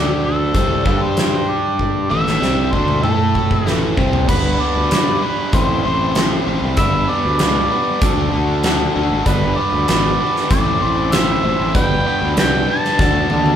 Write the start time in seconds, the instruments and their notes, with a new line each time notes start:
Already playing: fingered electric bass D2, overdriven electric guitar D3 A3 D4, harmonica G4
0.25 harmonica A4
0.54 fingered electric bass C2, overdriven electric guitar C3 G3 C4, kick, closed hi-hat
0.85 fingered electric bass G2, overdriven electric guitar G3 D4 G4, kick
1.02 harmonica C5
1.17 snare, closed hi-hat
1.49 harmonica D5
1.79 kick
2.09 fingered electric bass A1, overdriven electric guitar A2 E3 A3, harmonica E5, high tom
2.27 snare
2.41 fingered electric bass C2, overdriven electric guitar C3 G3 C4, snare
2.72 fingered electric bass D2, overdriven electric guitar D3 A3 D4, harmonica C5, kick
2.88 mid tom
3.03 fingered electric bass A2, overdriven electric guitar A3 E4 A4, harmonica A4, mid tom
3.35 kick
3.51 kick
3.66 fingered electric bass A1, overdriven electric guitar A2 E3 A3, snare
3.97 fingered electric bass C2, overdriven electric guitar C3 G3 C4, kick
4.13 floor tom
4.28 fingered electric bass G1, overdriven electric guitar G3 B3 D4 B4, harmonica B4, kick, crash
4.60 overdriven electric guitar G3 B3 D4 B4, harmonica D5
4.76 fingered electric bass D2
4.90 fingered electric bass G2, overdriven electric guitar G3 B3 D4 B4, harmonica D5, snare, closed hi-hat
5.21 overdriven electric guitar G3 B3 D4 B4, harmonica B4
5.53 fingered electric bass A1, overdriven electric guitar A2 A3 C4 E4 C5, harmonica C5, kick, closed hi-hat
5.85 fingered electric bass A1, overdriven electric guitar A2 A3 C4 E4 C5
6.15 overdriven electric guitar A2 A3 C4 E4 C5, snare, closed hi-hat
6.47 fingered electric bass A1, overdriven electric guitar A2 A3 C4 E4 C5
6.62 fingered electric bass C2
6.77 fingered electric bass G1, overdriven electric guitar G3 B3 D4 B4, harmonica E5, kick, closed hi-hat
7.09 overdriven electric guitar G3 B3 D4 B4, harmonica D5
7.25 fingered electric bass D2
7.39 fingered electric bass C#2, overdriven electric guitar G3 B3 D4 B4, snare, closed hi-hat
7.70 overdriven electric guitar G3 B3 D4 B4
8.01 fingered electric bass D2, overdriven electric guitar D3 D4 F#4 A4, kick, closed hi-hat
8.33 fingered electric bass D2, overdriven electric guitar D3 D4 F#4 A4
8.64 overdriven electric guitar D3 D4 F#4 A4, snare, closed hi-hat
8.95 fingered electric bass D2, overdriven electric guitar D3 D4 F#4 A4
9.11 fingered electric bass G#1
9.26 fingered electric bass G1, overdriven electric guitar G3 B3 D4 B4, harmonica B4, kick, closed hi-hat
9.57 overdriven electric guitar G3 B3 D4 B4, harmonica D5
9.73 fingered electric bass D2
9.87 fingered electric bass G#1, overdriven electric guitar G3 B3 D4 B4, snare, closed hi-hat
10.19 overdriven electric guitar G3 B3 D4 B4
10.36 snare
10.50 fingered electric bass A1, overdriven electric guitar A2 A3 C4 E4 C5, harmonica D5, kick, closed hi-hat
10.80 fingered electric bass A1, overdriven electric guitar A2 A3 C4 E4 C5
11.12 overdriven electric guitar A2 A3 C4 E4 C5, harmonica E5, snare, closed hi-hat
11.43 fingered electric bass A1, overdriven electric guitar A2 A3 C4 E4 C5
11.59 fingered electric bass A1
11.74 fingered electric bass G1, overdriven electric guitar G3 B3 D4 B4, harmonica G5, kick, closed hi-hat
12.06 overdriven electric guitar G3 B3 D4 B4
12.22 fingered electric bass D2
12.37 fingered electric bass C2, overdriven electric guitar G3 B3 D4 B4, harmonica G5, snare, closed hi-hat
12.68 overdriven electric guitar G3 B3 D4 B4, harmonica A5
12.85 snare
12.99 fingered electric bass D2, overdriven electric guitar D3 D4 F#4 A4, kick, snare
13.30 fingered electric bass D2, overdriven electric guitar D3 D4 F#4 A4, high tom
13.46 high tom